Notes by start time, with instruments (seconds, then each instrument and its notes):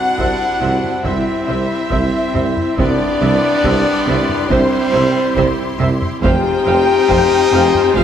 Already playing: string section G3 C4 E4 C5, trumpet D4, french horn section F#4, violin section F#5, flute F#5
0.18 tuba C2, double bass section C2, cello section C3, viola section C5 E5, taiko
0.61 double bass section C2, tuba C2, cello section C3, viola section C5 E5
0.84 taiko low-mid
1.04 double bass section C2, tuba C2, cello section C3, trumpet C4, french horn section E4, viola section C5 E5, violin section E5, flute E5, taiko
1.47 tuba C2, double bass section C2, cello section C3, viola section C5 E5
1.91 tuba C2, double bass section C2, cello section C3, viola section C5 E5, taiko
2.34 double bass section C2, tuba C2, cello section C3, viola section C5 E5, taiko low-mid
2.57 taiko low-mid
2.77 double bass section C2, tuba C2, cello section C3, string section G3 E4 G4 C6, trumpet B3, viola section C4 E5, french horn section D4, violin section D5, flute D5, taiko
3.21 double bass section C2, tuba C2, cello section C3, viola section C4 E5
3.64 double bass section C2, tuba C2, cello section C3, viola section C4 E5, taiko
4.07 double bass section C2, tuba C2, cello section C3, viola section C4 E5
4.29 taiko low-mid
4.50 double bass section C2, tuba C2, cello section C3, trumpet G3, french horn section C4, violin section C5, viola section C5 E5, flute C5, taiko
4.93 double bass section C2, tuba C2, cello section C3, viola section C5 E5
5.36 double bass section C2, tuba C2, cello section C3, viola section C5 E5, taiko
5.79 double bass section C2, tuba C2, cello section C3, viola section C5 E5, taiko low-mid
6.02 taiko low-mid
6.21 tuba F1, double bass section F1, cello section F2, string section G#3 C4 F4 C5, trumpet D#4, french horn section G4, viola section C5 F5, violin section G5, flute G5, taiko
6.66 double bass section F1, tuba F1, cello section F2, viola section C5 F5
7.09 double bass section F1, tuba F1, cello section F2, viola section C5 F5, taiko
7.52 double bass section F1, tuba F1, cello section F2, viola section C5 F5
7.75 taiko low-mid
7.95 double bass section F1, tuba F1, cello section F2, trumpet C4, french horn section F4, viola section C5 F5, flute F5, violin section F5, taiko